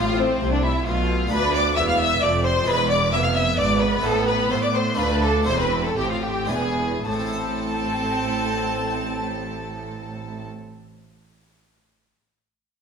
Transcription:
0.00 0.40 A1 loud
0.00 0.37 A2 medium
0.00 0.40 A2 medium
0.00 0.40 A3 medium
0.00 1.25 A3 medium
0.00 1.26 C4 medium
0.00 0.18 F4 loud
0.00 0.20 F4 loud
0.00 1.27 F4 medium
0.00 0.17 F5 loud
0.17 0.52 C4 loud
0.17 0.51 C4 medium
0.17 0.52 C5 loud
0.40 0.85 C2 medium
0.40 0.85 C3 medium
0.40 0.82 C3 medium
0.40 0.85 A3 medium
0.51 0.63 D4 medium
0.51 0.65 D4 medium
0.51 0.63 D5 medium
0.62 0.86 E4 medium
0.62 0.85 E4 medium
0.62 0.85 E5 loud
0.85 1.30 B1 medium
0.85 1.30 B2 loud
0.85 1.27 B2 medium
0.85 1.30 A3 medium
0.85 1.31 F4 medium
0.85 1.30 F4 loud
0.85 1.30 F5 loud
1.27 2.61 B3 medium
1.27 2.62 D4 medium
1.27 2.63 F4 medium
1.31 1.73 D2 medium
1.31 1.74 D2 medium
1.31 1.74 D4 medium
1.31 1.53 B4 loud
1.31 1.56 B4 loud
1.31 1.54 B5 loud
1.53 1.61 D5 loud
1.53 1.76 D5 loud
1.53 1.76 D6 loud
1.76 2.22 E1 medium
1.76 2.22 E2 medium
1.76 2.18 E2 medium
1.76 2.22 B3 medium
1.76 1.81 E5 loud
1.76 1.88 E5 medium
1.76 1.88 E6 loud
1.87 1.99 F5 loud
1.87 1.99 F5 medium
1.87 1.99 F6 loud
1.99 2.22 E5 loud
1.99 2.24 E5 loud
1.99 2.22 E6 loud
2.21 2.67 F1 medium
2.21 2.64 F2 medium
2.21 2.67 F2 loud
2.21 2.68 A3 medium
2.21 2.45 D5 loud
2.21 2.46 D5 loud
2.21 2.30 D6 loud
2.44 2.67 C5 loud
2.44 2.69 C5 loud
2.44 2.67 C6 loud
2.63 3.09 G#3 medium
2.63 3.99 D4 medium
2.63 4.00 E4 medium
2.63 2.90 B4 loud
2.68 3.12 E1 loud
2.68 3.09 E2 medium
2.68 3.12 E2 medium
2.68 3.12 G#3 medium
2.68 2.90 B4 loud
2.68 2.90 B5 loud
2.89 2.97 D5 loud
2.89 3.12 D5 medium
2.89 3.12 D6 loud
3.12 3.58 F1 medium
3.12 3.58 F2 medium
3.12 3.54 F2 medium
3.12 4.99 B3 loud
3.12 3.25 E5 loud
3.12 3.18 E5 loud
3.12 3.24 E6 loud
3.24 3.35 F5 loud
3.24 3.29 F5 medium
3.24 3.36 F6 loud
3.35 3.43 E5 medium
3.35 3.59 E5 loud
3.35 3.58 E6 loud
3.57 4.03 G#1 loud
3.57 4.03 G#2 medium
3.57 4.00 G#2 medium
3.57 3.82 D5 loud
3.57 3.81 D5 medium
3.57 3.80 D6 loud
3.80 4.05 B4 medium
3.80 4.04 B4 medium
3.80 4.04 B5 loud
4.00 4.50 A3 medium
4.00 4.94 C4 medium
4.00 4.95 E4 medium
4.04 4.50 A1 loud
4.04 4.47 A2 medium
4.04 4.50 A2 medium
4.04 4.26 A4 loud
4.04 4.27 A4 loud
4.04 4.27 A5 loud
4.27 4.35 B4 loud
4.27 4.50 B4 loud
4.27 4.50 B5 loud
4.50 4.99 A2 medium
4.50 4.98 A3 medium
4.50 4.93 A3 medium
4.50 4.61 C5 medium
4.50 4.63 C5 loud
4.50 4.63 C6 loud
4.62 4.67 D5 medium
4.62 4.75 D6 loud
4.74 4.99 C5 loud
4.74 4.82 C5 medium
4.74 4.99 C6 loud
4.94 5.42 A3 medium
4.94 5.44 D4 medium
4.94 5.45 F4 medium
4.94 5.21 B4 loud
4.94 5.22 B4 loud
4.98 5.46 D2 medium
4.98 5.43 D2 medium
4.98 5.46 D2 medium
4.98 5.47 D4 medium
4.98 5.23 B5 loud
5.22 5.46 A4 medium
5.22 5.47 A4 loud
5.22 5.47 A5 loud
5.43 6.44 A3 medium
5.43 6.45 C4 medium
5.43 6.46 E4 medium
5.43 5.59 C5 loud
5.43 5.58 C5 loud
5.47 5.96 E1 medium
5.47 5.96 E2 medium
5.47 5.93 E2 medium
5.47 5.96 C4 medium
5.47 5.59 C6 loud
5.59 5.84 B4 medium
5.59 5.83 B4 medium
5.59 5.85 B5 loud
5.84 5.98 A4 medium
5.84 5.97 A4 medium
5.84 5.97 A5 loud
5.96 6.48 A1 medium
5.96 6.48 A2 medium
5.96 6.46 A2 medium
5.96 6.49 C4 medium
5.96 6.09 G4 loud
5.96 6.12 G4 medium
5.96 6.10 G5 loud
6.09 6.22 F4 medium
6.09 6.25 F4 medium
6.09 6.23 F5 loud
6.22 6.49 G4 medium
6.22 6.49 G5 loud
6.45 7.01 B3 medium
6.45 7.02 D4 medium
6.45 7.03 E4 medium
6.45 7.04 G#4 medium
6.49 7.05 E1 medium
6.49 7.05 E2 medium
6.49 7.01 E2 medium
6.49 6.81 B3 medium
6.49 7.04 G#4 medium
6.49 7.05 G#5 loud
7.04 10.44 A1 medium
7.04 10.44 A2 medium
7.04 10.44 C4 loud
7.04 10.44 A4 medium
7.04 10.44 A5 medium
7.04 10.45 A5 medium
7.12 10.51 A3 medium
7.19 10.58 C4 medium
7.26 10.65 E4 medium
7.33 10.72 C5 medium

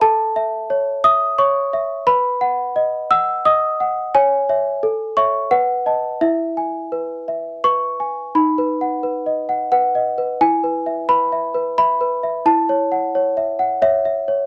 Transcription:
0.01 2.03 A4 medium
0.01 1.04 A5 medium
0.36 0.91 E5 medium
0.70 1.25 C#5 medium
1.04 1.59 E5 medium
1.04 1.38 D#6 loud
1.38 1.94 C#5 medium
1.38 2.07 C#6 medium
1.73 2.07 E5 medium
2.07 4.09 B4 medium
2.07 3.10 B5 medium
2.41 2.96 F#5 medium
2.76 3.31 D#5 medium
3.11 3.65 F#5 medium
3.11 3.45 E6 loud
3.45 4.00 D#5 medium
3.45 4.14 D#6 medium
3.80 4.14 F#5 medium
4.15 4.48 C#5 medium
4.15 5.18 G#5 loud
4.49 4.80 C#5 soft
4.49 4.80 E5 medium
4.83 5.50 A4 medium
5.17 5.48 C#5 soft
5.17 5.48 E5 medium
5.17 5.52 C#6 medium
5.51 6.19 B4 medium
5.51 6.21 F#5 medium
5.86 6.18 D#5 soft
5.86 6.18 A5 soft
6.21 8.30 E4 medium
6.21 7.27 E5 medium
6.57 7.14 G#5 soft
6.92 7.49 B4 soft
7.28 7.85 E5 soft
7.64 8.20 B4 soft
7.64 8.34 C#6 medium
8.00 8.35 G#5 soft
8.35 10.37 D#4 medium
8.35 9.73 B5 medium
8.58 8.95 B4 medium
8.81 9.18 F#5 soft
9.03 9.40 B4 soft
9.26 9.63 D#5 soft
9.49 9.71 F#5 soft
9.72 10.09 B4 soft
9.72 10.40 F#5 medium
9.95 10.32 D#5 soft
10.18 10.41 B4 soft
10.41 12.42 E4 medium
10.41 11.09 G#5 medium
10.64 11.00 B4 soft
10.86 11.23 E5 soft
11.09 11.46 B4 soft
11.09 11.77 B5 medium
11.32 11.69 E5 soft
11.54 11.91 B4 soft
11.78 12.15 E5 soft
11.78 12.46 B5 medium
12.01 12.37 B4 soft
12.23 12.46 E5 soft
12.46 14.46 E4 medium
12.46 13.83 A5 medium
12.69 13.06 C#5 medium
12.92 13.28 F#5 soft
13.15 13.51 C#5 medium
13.37 13.74 E5 soft
13.59 13.96 F#5 medium
13.82 14.19 C#5 medium
13.82 14.04 E5 medium
14.05 14.42 E5 soft
14.28 14.46 C#5 soft

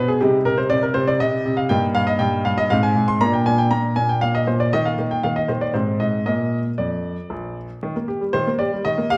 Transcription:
0.00 0.20 B2 soft
0.00 0.17 G3 soft
0.00 0.17 D4 soft
0.08 0.21 G#4 medium
0.21 0.44 C3 medium
0.21 1.66 G3 soft
0.21 1.66 D#4 soft
0.21 0.36 G4 medium
0.45 0.69 C3 medium
0.45 0.58 A#4 medium
0.58 0.70 C5 medium
0.70 0.93 C3 medium
0.70 0.82 D5 medium
0.82 0.95 A#4 medium
0.94 1.19 C3 medium
0.94 1.07 C5 medium
1.07 1.20 D5 medium
1.20 1.44 C3 medium
1.20 1.58 D#5 medium
1.45 1.69 C3 medium
1.57 1.70 F5 medium
1.69 1.94 G2 medium
1.69 2.67 A#3 soft
1.69 2.67 D#4 soft
1.69 1.85 G5 medium
1.95 2.18 G2 medium
1.95 2.07 F5 medium
2.07 2.20 D#5 medium
2.19 2.44 G2 medium
2.19 2.45 G5 medium
2.45 2.70 G2 medium
2.45 2.58 F5 medium
2.58 2.71 D#5 medium
2.70 2.95 G#2 medium
2.70 3.18 C4 soft
2.70 3.18 D#4 soft
2.70 2.83 F5 medium
2.83 3.08 G#5 medium
2.96 3.21 G#2 medium
3.08 3.21 C6 medium
3.21 3.45 A#2 medium
3.21 4.69 A#3 soft
3.21 4.69 D4 soft
3.21 3.34 A#5 medium
3.33 3.46 G5 medium
3.46 3.70 A#2 soft
3.46 3.59 G#5 medium
3.58 3.71 G5 medium
3.71 3.95 A#2 medium
3.71 3.96 A#5 medium
3.96 4.20 A#2 soft
3.96 4.09 G#5 medium
4.09 4.22 G5 medium
4.21 4.46 A#2 soft
4.21 4.34 F5 medium
4.35 4.47 D#5 medium
4.47 4.72 A#2 soft
4.47 4.60 C5 medium
4.60 4.73 D5 medium
4.73 4.97 D#3 medium
4.73 5.71 A#3 soft
4.73 5.71 D#4 soft
4.73 4.86 D#5 medium
4.85 5.01 F5 medium
4.99 5.23 D#3 soft
5.11 5.24 G5 medium
5.23 5.48 D#3 soft
5.23 5.36 F5 medium
5.36 5.49 D#5 medium
5.48 5.74 D#3 soft
5.48 5.61 C5 soft
5.61 5.74 D5 medium
5.74 5.99 G#2 soft
5.74 6.23 C4 soft
5.74 6.23 D#4 soft
5.74 6.00 C5 medium
6.00 6.26 G#2 soft
6.00 6.24 D#5 medium
6.26 6.63 A#2 soft
6.26 6.69 A#3 soft
6.26 6.68 A#4 soft
6.26 6.58 D#5 medium
6.78 7.15 F2 soft
6.78 7.56 D5 medium
7.30 7.67 A#1 soft
7.83 7.95 D#3 medium
7.96 8.09 A#3 soft
8.08 8.22 G4 soft
8.21 8.35 G3 soft
8.33 8.46 D#3 medium
8.33 8.49 C5 medium
8.47 8.60 A#3 soft
8.59 8.73 G4 soft
8.59 8.82 D5 medium
8.73 8.86 G3 soft
8.85 8.97 D#3 soft
8.85 9.10 D#5 medium
8.98 9.11 A#3 soft
9.10 9.17 G4 medium
9.10 9.17 F5 loud

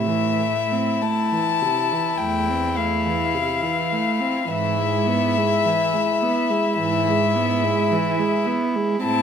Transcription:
0.00 0.82 A2 soft
0.00 4.47 E4 soft
0.00 1.03 E5 soft
0.08 0.41 E3 soft
0.40 0.74 A3 soft
0.72 1.04 C4 soft
1.01 1.34 A3 soft
1.01 2.19 A5 soft
1.33 1.64 E3 soft
1.62 1.94 C3 soft
1.93 2.21 E3 soft
2.18 3.16 E2 soft
2.18 2.78 G5 soft
2.22 2.51 A3 soft
2.49 2.79 C4 soft
2.77 3.08 A3 soft
2.77 4.50 F5 soft
3.06 3.36 E3 soft
3.35 3.64 C3 soft
3.63 3.94 E3 soft
3.93 4.22 A3 soft
4.21 4.48 C4 soft
4.48 5.46 G#2 soft
4.48 4.80 E3 soft
4.48 9.02 E4 soft
4.48 6.79 E5 medium
4.78 5.09 G#3 soft
5.07 5.39 B3 soft
5.38 5.67 G#3 soft
5.66 5.95 E3 soft
5.94 6.24 G#3 soft
6.22 6.52 B3 soft
6.50 6.79 G#3 soft
6.79 7.74 G#2 soft
6.79 7.10 E3 soft
6.79 8.46 E5 medium
7.08 7.37 G#3 soft
7.36 7.65 B3 soft
7.63 7.93 G#3 soft
7.91 8.21 E3 soft
8.19 8.48 G#3 soft
8.46 8.77 B3 soft
8.76 9.04 G#3 soft
9.04 9.22 A2 medium
9.04 9.22 C4 medium
9.04 9.22 E4 soft
9.04 9.22 A5 medium

